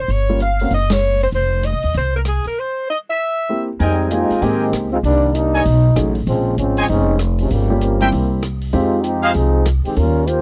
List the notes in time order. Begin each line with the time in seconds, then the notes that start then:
0.00 C5
0.08 G1 C#5, open hi-hat
0.29 G3 A#3 C#4 F4
0.40 F5, closed hi-hat
0.59 A#3 C4 C#4 F#4, open hi-hat
0.70 F#1, open hi-hat
0.74 D#5
0.90 C#5, snare, ride
1.21 C5, open hi-hat
1.32 F1 C5, open hi-hat
1.63 D#5, closed hi-hat
1.74 C2
1.83 D#2, open hi-hat
1.94 C2 C5, open hi-hat
2.16 A#4
2.25 G#4, cross-stick, closed hi-hat
2.44 A#4, muted upright bass stroke, open hi-hat
2.60 C5
2.90 D#5
3.10 E5
3.49 A#3 C4 E4 G4
3.80 F2 G3 G#3 C4 D#4 A#4 D#5 G5 G#5, open hi-hat
4.11 G#3 A#3 C4 D#4 F4 G4, closed hi-hat
4.31 muted upright bass stroke, open hi-hat
4.42 G#2 D#3 G#3 A#3 C4 D#4 G4, open hi-hat
4.73 C#2, cross-stick, closed hi-hat
4.93 G#3 C4 D#4 F4
5.03 C2 D#3 G3 A#3 D4, open hi-hat
5.35 G3 A#3 D4 D#4, closed hi-hat
5.54 A4 C#5 D#5 G#5, open hi-hat
5.65 B1, open hi-hat
5.96 A1 F#3 A3 C#4 D#4 G#4, cross-stick, closed hi-hat
6.15 open hi-hat
6.27 A#1 C#3 F3 G#3 C4, open hi-hat
6.58 G#1 F3 G#3 C4 C#4, closed hi-hat
6.77 C5 C#5 D#5 G#5, open hi-hat
6.88 F1 G#3 C4 C#4 D#4, open hi-hat
7.19 cross-stick, closed hi-hat
7.39 C3 F3 G#3 C#4, open hi-hat
7.50 G1 C#3 F3 G3 A#3, open hi-hat
7.70 G3 A#3 C#4 F4 G4
7.81 F3 G3 A#3 C4, closed hi-hat
8.00 G3 A#3 C4 E4 G4 A#4 C5 E5 G5, open hi-hat
8.12 C2, open hi-hat
8.43 cross-stick, closed hi-hat
8.61 open hi-hat
8.73 F2 G#3 C4 D#4 F4 G4, open hi-hat
9.04 F3 C4 D#4 G4, closed hi-hat
9.23 G#4 C5 D#5 F5, open hi-hat
9.34 C2 F3 C4 D#4 G#4, open hi-hat
9.65 cross-stick, closed hi-hat
9.85 D#3 G#3 C4 G4, muted upright bass stroke, open hi-hat
9.96 D#2 G3 C#4 F4 A#4, open hi-hat
10.27 A#3 F4 G4 C5, closed hi-hat